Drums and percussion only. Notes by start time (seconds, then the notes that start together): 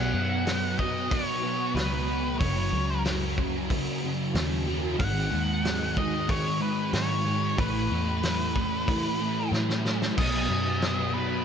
0.47 snare, open hi-hat
0.79 kick
1.11 kick, open hi-hat
1.77 snare, open hi-hat
2.41 kick, open hi-hat
3.05 snare, open hi-hat
3.38 kick
3.70 kick, open hi-hat
4.35 snare, open hi-hat
5.00 kick, open hi-hat
5.65 snare, open hi-hat
5.97 kick
6.29 kick, open hi-hat
6.93 snare, open hi-hat
7.58 kick, open hi-hat
8.23 snare, open hi-hat
8.56 kick
8.88 kick, open hi-hat
9.53 snare
9.70 snare
9.86 snare
10.02 snare
10.18 kick, crash
10.82 snare, crash